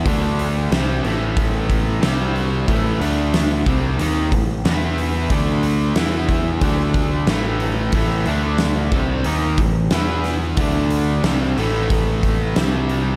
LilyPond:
<<
  \new Staff \with { instrumentName = "Distorted electric guitar" } { \clef bass \time 4/4 \key d \lydian \tempo 4 = 91 <d a d'>4 <c g c'>8 <a, e a>4. <c g c'>4 | <a, e a>8 <d a d'>4 <c g c'>8 <dis bes dis'>8 <a, e>8 <e b e'>4 | <d a d'>4 <e b e'>4 <d a d'>4 <a, e a>4 | <a, e a>8 <d a d'>4 <c g c'>8 <dis bes dis'>8 <a, e>8 <e b e'>4 |
<d a d'>4 <c g c'>8 <a, e a>4. <c g c'>4 | }
  \new Staff \with { instrumentName = "Overdriven electric guitar" } { \clef bass \time 4/4 \key d \lydian <d a d'>4 <c g c'>8 <a, e a>4. <c g c'>4 | <a, e a>8 <d a d'>4 <c g c'>8 <dis bes dis'>8 <a, e>8 <e b e'>4 | <d a d'>4 <e b e'>4 <d a d'>4 <a, e a>4 | <a, e a>8 <d a d'>4 <c g c'>8 <dis bes dis'>8 <a, e>8 <e b e'>4 |
<d a d'>4 <c g c'>8 <a, e a>4. <c g c'>4 | }
  \new Staff \with { instrumentName = "Picked electric bass" } { \clef bass \time 4/4 \key d \lydian d,4 c,8 a,,4. c,4 | a,,8 d,4 c,8 dis,8 a,,8 e,4 | d,4 e,4 d,4 a,,4 | a,,8 d,4 c,8 dis,8 a,,8 e,4 |
d,4 c,8 a,,4. c,4 | }
  \new DrumStaff \with { instrumentName = "Drums" } \drummode { \time 4/4 <hho bd>8 hho8 <hho sn>8 hho8 <hho bd>8 <hho bd>8 <hho sn>8 hho8 | <hho bd>8 hho8 <hho sn>8 <hho bd>8 hho8 <hho bd>8 <hho sn>8 hho8 | <hho bd>8 hho8 <hho sn>8 <hho bd>8 <hho bd>8 <hho bd>8 <hho sn>8 hho8 | <hho bd>8 hho8 <hho sn>8 <hho bd>8 hho8 <hho bd>8 <hho sn>8 <hho sn>8 |
<hho bd>8 hho8 <hho sn>8 hho8 <hho bd>8 <hho bd>8 <hho sn>8 hho8 | }
>>